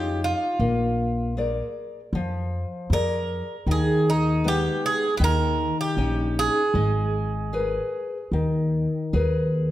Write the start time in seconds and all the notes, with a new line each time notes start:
Already playing: F2 C#4 D#4 F4 G4
0.24 F4
0.59 A#1 A#3
1.37 G#4 A#4 D5
2.13 F2 F3
2.90 F2 G#4 A#4 D5
3.66 D#2 D#3
3.71 G#4
4.10 D#4
4.44 G#3 B3 D#4 G4
4.86 G#4
5.17 D#2 D#3 B4
5.24 A#4
5.81 G4
5.97 A#1 C#4 D#4 G5
6.39 G#4
6.74 G#1 G#3
7.53 G#4 A#4 B4
8.32 D#2 D#3
9.13 D#2 G#4 A#4 B4